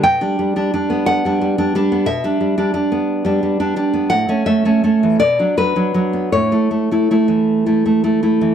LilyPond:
\new Staff \with { instrumentName = "Nylon-string guitar" } { \time 6/8 \key g \lydian \tempo 4. = 57 << { g''4. fis''4. | e''2~ e''8 r8 | fis''8 e''4 d''8 b'4 | cis''2~ cis''8 r8 | } \\ { b,16 <g d'>16 g16 <g d'>16 <g d'>16 b8 <g d'>16 g16 <g d'>16 <g d'>16 b16 | b,16 <g d'>16 g16 <g d'>16 <g d'>16 b8 <g d'>16 g16 <g d'>16 <g d'>16 b16 | a,16 <a cis'>16 a16 <a cis'>16 <a cis'>16 e16 b,16 <fis d'>16 fis16 <fis d'>16 <fis d'>16 b16 | a,16 <a e'>16 a16 <a e'>16 <a e'>16 e8 <a e'>16 a16 <a e'>16 <a e'>16 e16 | } >> }